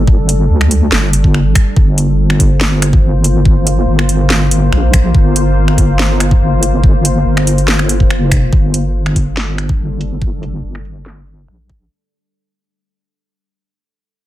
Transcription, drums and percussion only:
0.08 kick
0.29 closed hi-hat
0.61 finger snap
0.71 closed hi-hat
0.92 snare
1.13 closed hi-hat
1.24 kick
1.34 finger snap
1.55 finger snap, kick, closed hi-hat
1.77 kick
1.98 closed hi-hat
2.30 finger snap
2.40 kick, closed hi-hat
2.61 snare
2.82 finger snap, closed hi-hat
2.93 kick
3.24 closed hi-hat
3.45 kick
3.67 closed hi-hat
3.99 finger snap
4.09 closed hi-hat
4.30 snare
4.51 closed hi-hat
4.73 finger snap
4.93 finger snap, kick, closed hi-hat
5.15 kick
5.36 closed hi-hat
5.68 finger snap
5.78 kick, closed hi-hat
5.99 snare
6.20 finger snap, closed hi-hat
6.31 kick
6.63 closed hi-hat
6.84 kick
7.05 closed hi-hat
7.37 finger snap
7.47 closed hi-hat
7.58 closed hi-hat
7.68 snare
7.79 finger snap
7.89 closed hi-hat
8.00 kick
8.10 finger snap
8.31 finger snap, kick, closed hi-hat
8.53 kick
8.74 closed hi-hat
9.06 finger snap
9.16 kick, closed hi-hat
9.37 snare
9.58 finger snap, closed hi-hat
9.69 kick
10.01 closed hi-hat
10.22 kick
10.43 closed hi-hat
10.75 finger snap
10.85 closed hi-hat
11.06 snare
11.27 closed hi-hat
11.48 finger snap
11.69 finger snap, kick

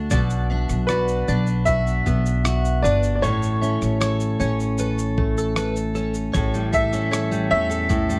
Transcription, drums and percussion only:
0.10 kick, shaker
0.30 shaker
0.69 cross-stick, shaker
0.88 cross-stick, shaker
1.08 shaker
1.28 shaker
1.47 shaker
1.66 kick, shaker
1.87 shaker
2.06 kick, shaker
2.26 shaker
2.45 cross-stick, shaker
2.65 shaker
2.85 shaker
3.03 shaker
3.23 shaker
3.43 shaker
3.63 shaker
3.82 cross-stick, shaker
4.01 cross-stick, shaker
4.20 shaker
4.40 shaker
4.60 shaker
4.78 shaker
4.99 shaker
5.18 kick
5.38 shaker
5.56 cross-stick, shaker
5.76 shaker
5.95 shaker
6.14 shaker
6.34 kick, shaker
6.54 shaker
6.73 kick, shaker
6.93 cross-stick, shaker
7.13 cross-stick, shaker
7.32 shaker
7.71 shaker
7.90 kick, shaker
8.10 shaker

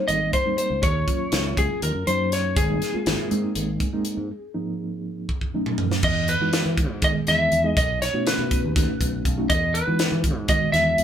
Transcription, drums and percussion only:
0.08 closed hi-hat
0.33 kick, closed hi-hat
0.58 closed hi-hat
0.83 kick, closed hi-hat
1.08 kick, closed hi-hat
1.32 snare, closed hi-hat
1.57 kick, closed hi-hat
1.82 closed hi-hat
2.07 closed hi-hat
2.32 snare, closed hi-hat
2.56 kick, closed hi-hat
2.82 snare, closed hi-hat
3.06 snare, closed hi-hat
3.31 closed hi-hat
3.55 closed hi-hat
3.80 kick, closed hi-hat
4.05 closed hi-hat
5.29 kick
5.41 kick
5.66 mid tom
5.78 floor tom
5.92 snare
6.03 kick, crash
6.28 closed hi-hat
6.53 snare, closed hi-hat
6.78 kick, closed hi-hat
7.02 kick, closed hi-hat
7.27 snare, closed hi-hat
7.52 closed hi-hat
7.77 kick, closed hi-hat
8.02 snare, closed hi-hat
8.27 snare, closed hi-hat
8.51 kick, closed hi-hat
8.76 kick, snare, closed hi-hat
9.01 kick, closed hi-hat
9.25 kick, closed hi-hat
9.50 kick, closed hi-hat
9.75 closed hi-hat
9.99 snare, closed hi-hat
10.24 kick, closed hi-hat
10.48 kick, closed hi-hat
10.74 snare, closed hi-hat
10.98 closed hi-hat

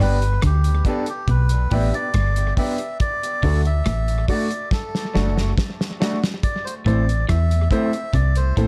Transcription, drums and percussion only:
0.00 kick, cross-stick, open hi-hat
0.22 closed hi-hat
0.42 kick, cross-stick, closed hi-hat
0.64 closed hi-hat
0.85 kick, closed hi-hat
1.06 closed hi-hat
1.28 kick, closed hi-hat
1.49 closed hi-hat
1.71 kick, open hi-hat
1.94 closed hi-hat
2.14 kick, cross-stick, closed hi-hat
2.36 closed hi-hat
2.57 kick, open hi-hat
2.78 closed hi-hat
3.00 kick, closed hi-hat
3.23 closed hi-hat
3.43 kick, open hi-hat
3.65 closed hi-hat
3.86 kick, cross-stick, closed hi-hat
4.08 closed hi-hat
4.28 kick, open hi-hat
4.51 closed hi-hat
4.71 kick, snare
4.95 snare
5.15 snare
5.38 snare
5.58 kick, snare
5.81 snare
6.02 snare
6.24 snare
6.43 kick, closed hi-hat
6.67 closed hi-hat
6.86 kick, closed hi-hat
7.09 closed hi-hat
7.29 kick, cross-stick, closed hi-hat
7.51 closed hi-hat
7.71 kick, closed hi-hat
7.93 closed hi-hat
8.13 kick, closed hi-hat
8.35 closed hi-hat
8.57 kick, closed hi-hat

